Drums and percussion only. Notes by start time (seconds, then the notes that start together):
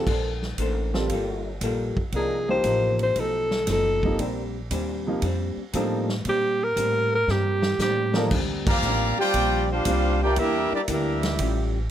0.07 kick, crash
0.42 snare
0.58 kick, hi-hat pedal, ride
0.94 snare
1.09 kick, ride
1.61 kick, hi-hat pedal, ride
1.97 kick
2.12 kick, ride
2.64 kick, hi-hat pedal, ride
2.99 ride
3.16 kick, ride
3.51 snare
3.67 kick, snare, hi-hat pedal, ride
4.03 kick
4.19 kick, ride
4.71 kick, hi-hat pedal, ride
5.22 kick, ride
5.73 kick, hi-hat pedal, ride
6.09 snare
6.25 kick, ride
6.77 kick, hi-hat pedal, ride
7.28 snare
7.62 snare
7.79 snare, hi-hat pedal
8.14 snare
8.31 kick, crash
8.66 kick, crash
8.82 hi-hat pedal
9.34 kick, ride
9.85 kick, hi-hat pedal, ride
10.36 kick, ride
10.88 kick, hi-hat pedal, ride
11.23 snare, ride
11.39 kick, ride